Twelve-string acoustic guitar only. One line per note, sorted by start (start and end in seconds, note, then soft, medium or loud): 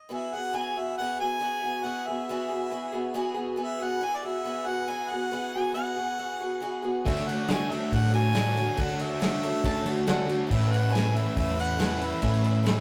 0.09 0.32 E3 medium
0.09 0.32 B3 medium
0.09 0.33 F#4 medium
0.09 0.33 G#4 medium
0.34 0.52 B3 soft
0.34 0.53 F#4 medium
0.34 0.53 G#4 medium
0.53 0.76 E3 medium
0.53 0.76 B3 medium
0.53 0.75 F#4 medium
0.53 0.74 G#4 medium
0.75 0.99 B3 soft
0.75 0.98 F#4 soft
0.75 0.98 G#4 medium
0.98 1.20 E3 medium
0.98 1.21 B3 medium
0.98 1.19 F#4 medium
0.98 1.18 G#4 medium
1.19 1.39 B3 soft
1.19 1.40 F#4 soft
1.19 1.41 G#4 medium
1.39 1.62 E3 medium
1.39 1.63 B3 medium
1.39 1.63 F#4 medium
1.39 1.61 G#4 medium
1.62 1.83 B3 soft
1.62 1.83 F#4 medium
1.62 1.85 G#4 medium
1.84 2.06 E3 medium
1.84 2.06 B3 medium
1.84 2.06 F#4 medium
1.84 2.06 G#4 medium
2.07 2.29 B3 soft
2.07 2.30 F#4 soft
2.07 2.29 G#4 medium
2.29 2.50 E3 medium
2.29 2.51 B3 medium
2.29 2.50 F#4 medium
2.29 2.48 G#4 medium
2.49 2.70 B3 soft
2.49 2.71 F#4 soft
2.49 2.71 G#4 medium
2.70 2.92 E3 medium
2.70 2.93 B3 medium
2.70 2.92 F#4 medium
2.70 2.91 G#4 medium
2.92 3.13 B3 medium
2.92 3.15 F#4 medium
2.92 3.14 G#4 medium
3.14 3.36 E3 loud
3.14 3.36 B3 loud
3.14 3.35 F#4 medium
3.14 3.33 G#4 loud
3.34 3.56 B3 medium
3.34 3.56 F#4 medium
3.34 3.56 G#4 medium
3.56 3.79 E3 medium
3.56 3.79 B3 medium
3.56 3.79 F#4 medium
3.56 3.78 G#4 medium
3.80 4.00 B3 soft
3.80 4.01 F#4 medium
3.80 4.01 G#4 medium
4.01 4.23 E3 medium
4.01 4.23 B3 medium
4.01 4.24 F#4 medium
4.01 4.21 G#4 medium
4.23 4.44 B3 soft
4.23 4.44 F#4 soft
4.23 4.45 G#4 medium
4.44 4.66 E3 medium
4.44 4.67 B3 medium
4.44 4.65 F#4 medium
4.44 4.63 G#4 medium
4.64 4.87 B3 soft
4.64 4.87 F#4 medium
4.64 4.87 G#4 medium
4.88 5.10 E3 medium
4.88 5.10 B3 medium
4.88 5.10 F#4 medium
4.88 5.10 G#4 loud
5.11 5.30 B3 soft
5.11 5.32 F#4 medium
5.11 5.32 G#4 soft
5.31 5.53 E3 medium
5.31 5.53 B3 medium
5.31 5.54 F#4 medium
5.31 5.54 G#4 medium
5.55 5.73 B3 soft
5.55 5.74 F#4 medium
5.55 5.74 G#4 medium
5.72 5.95 E3 medium
5.72 5.96 B3 medium
5.72 5.97 F#4 medium
5.72 5.95 G#4 medium
5.96 6.18 B3 soft
5.96 6.18 F#4 soft
5.96 6.18 G#4 medium
6.18 6.40 E3 medium
6.18 6.40 B3 medium
6.18 6.40 F#4 medium
6.18 6.39 G#4 medium
6.40 6.61 B3 medium
6.40 6.61 F#4 medium
6.40 6.61 G#4 medium
6.60 6.83 E3 medium
6.60 6.83 B3 medium
6.60 6.82 F#4 loud
6.60 6.81 G#4 loud
6.82 7.05 B3 medium
6.82 7.05 F#4 medium
6.82 7.04 G#4 medium
7.05 7.27 D3 medium
7.05 7.27 A3 medium
7.05 7.27 C#4 medium
7.05 7.27 F#4 medium
7.05 7.26 A4 medium
7.27 7.48 C#4 soft
7.27 7.49 F#4 medium
7.27 7.48 A4 medium
7.48 7.70 D3 medium
7.48 7.70 A3 medium
7.48 7.70 C#4 medium
7.48 7.70 F#4 medium
7.48 7.69 A4 medium
7.70 7.91 C#4 soft
7.70 7.91 F#4 soft
7.70 7.92 A4 medium
7.91 8.13 A3 medium
7.91 8.13 C#4 medium
7.91 8.11 F#4 medium
7.91 8.10 A4 medium
8.11 8.33 C#4 soft
8.11 8.33 F#4 medium
8.11 8.33 A4 medium
8.33 8.55 D3 medium
8.33 8.55 A3 medium
8.33 8.56 C#4 medium
8.33 8.56 F#4 medium
8.33 8.54 A4 medium
8.55 8.78 C#4 soft
8.55 8.78 F#4 soft
8.55 8.77 A4 medium
8.78 9.00 D3 medium
8.78 9.00 A3 medium
8.78 9.00 C#4 medium
8.78 9.00 F#4 medium
8.78 9.00 A4 medium
9.01 9.19 C#4 soft
9.01 9.20 F#4 medium
9.01 9.20 A4 medium
9.19 9.42 D3 medium
9.19 9.42 A3 medium
9.19 9.42 C#4 medium
9.19 9.43 F#4 medium
9.19 9.42 A4 medium
9.43 9.63 C#4 soft
9.43 9.65 F#4 soft
9.43 9.64 A4 medium
9.63 9.85 A3 medium
9.63 9.86 C#4 medium
9.63 9.86 F#4 medium
9.63 9.85 A4 medium
9.86 10.06 C#4 medium
9.86 10.06 F#4 medium
9.86 10.07 A4 medium
10.07 10.29 D3 loud
10.07 10.29 A3 loud
10.07 10.27 C#4 medium
10.07 10.25 F#4 loud
10.07 10.24 A4 loud
10.25 10.47 C#4 medium
10.25 10.47 F#4 medium
10.25 10.48 A4 medium
10.47 10.70 A3 medium
10.47 10.70 C#4 medium
10.47 10.68 E4 medium
10.47 10.66 B4 medium
10.67 10.89 C#4 medium
10.67 10.90 E4 soft
10.67 10.91 B4 medium
10.89 11.13 A3 medium
10.89 11.14 C#4 medium
10.89 11.13 E4 medium
10.89 11.11 B4 medium
11.12 11.35 C#4 medium
11.12 11.35 E4 medium
11.12 11.35 B4 medium
11.35 11.58 A3 medium
11.35 11.56 C#4 medium
11.35 11.55 E4 medium
11.35 11.53 B4 medium
11.54 11.77 C#4 soft
11.54 11.77 E4 medium
11.54 11.78 B4 medium
11.77 12.00 A3 medium
11.77 11.99 C#4 medium
11.77 11.98 E4 medium
11.77 11.97 B4 medium
11.98 12.21 C#4 soft
11.98 12.21 E4 soft
11.98 12.21 B4 medium
12.21 12.44 A3 medium
12.21 12.42 C#4 medium
12.21 12.42 E4 medium
12.21 12.40 B4 medium
12.41 12.62 C#4 soft
12.41 12.63 E4 soft
12.41 12.65 B4 medium
12.63 12.80 A3 medium
12.63 12.80 C#4 medium
12.63 12.80 E4 medium
12.63 12.80 B4 loud